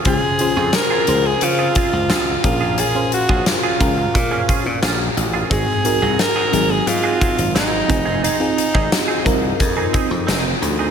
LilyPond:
<<
  \new Staff \with { instrumentName = "Alto saxophone" } { \time 4/4 \key des \major \tempo 4 = 88 aes'4 bes'8. aes'16 f'4. f'8 | aes'8 ges'8 f'2 r4 | aes'4 bes'8. aes'16 f'4 ees'4 | ees'4. r2 r8 | }
  \new Staff \with { instrumentName = "Clean electric guitar" } { \time 4/4 \key des \major <c' f' aes'>16 r8 <c' f' aes'>16 r16 <c' f' aes'>16 r8. <c' f' aes'>16 <c' f' aes'>16 r16 <c' f' aes'>16 r8 <des' f' aes'>16 | <des' f' aes'>16 r8 <des' f' aes'>16 r16 <des' f' aes'>16 r8. <des' f' aes'>16 <des' f' aes'>16 r16 <des' f' aes'>16 r8 <des' f' aes'>16 | <c' ges' aes'>16 r8 <c' ges' aes'>16 r16 <c' ges' aes'>16 r8. <c' ges' aes'>16 <c' ges' aes'>16 r16 <c' ges' aes'>16 r8 <c' ees' aes'>16 | <c' ees' aes'>16 r8 <c' ees' aes'>16 r16 <c' ees' aes'>16 r8. <c' ees' aes'>16 <c' ees' aes'>16 r16 <c' ees' aes'>16 r8 <c' ees' aes'>16 | }
  \new Staff \with { instrumentName = "FM electric piano" } { \time 4/4 \key des \major <des' f' aes' c''>8 <des' f' aes' c''>4 <des' f' aes' c''>4.~ <des' f' aes' c''>16 r16 <des' f' aes' bes'>8~ | <des' f' aes' bes'>16 <des' aes' c'' f''>4 r16 <des' f' aes' bes'>4.~ <des' f' aes' bes'>16 r8. | <c' ees' ges' aes'>8 <c' ees' ges' bes'>4 <ges c' ees' aes'>4.~ <ges c' ees' aes'>16 r16 <c' ees' f' aes'>8~ | <c' ees' f' aes'>16 <c' ees' f' aes'>4 r16 <c' ees' f' bes'>4.~ <c' ees' f' bes'>16 r8. | }
  \new Staff \with { instrumentName = "FM electric piano" } { \clef bass \time 4/4 \key des \major des4. r2 bes,8~ | bes,4 r2. | aes,4. r2 r8 | r1 | }
  \new Staff \with { instrumentName = "Slap bass" } { \clef bass \time 4/4 \key des \major des,16 r8 f,16 r8 des,8 des8 r16 des,16 des,8 bes,,8~ | bes,,16 r8 bes,,16 r8 des,8 bes,8 r16 bes,16 bes,,8 a,,8 | aes,,16 r8 c,16 r8 aes,,8 aes,8 r16 aes,,16 aes,,8 f,,8~ | f,,16 r8 aes,,16 r8 c,8 f,8 r16 f,16 f,,8 d,8 | }
  \new DrumStaff \with { instrumentName = "Drums" } \drummode { \time 4/4 <hh bd>8 hh8 <hh sn>8 hh8 hh8 <hh bd>8 <hh sn>8 <hh bd>8 | hh8 hh16 bd16 <hh sn>8 <hh bd>8 <hh bd>8 <hh bd>8 <hh sn>8 hh8 | <hh bd>8 hh8 <hh sn>8 hh8 hh8 <hh bd>16 hh16 <hh sn>8 <hh bd>8 | hh8 hh16 bd16 <hh sn>8 <hh bd>8 <hh bd>8 <hh bd>8 <hh sn>8 hh8 | }
>>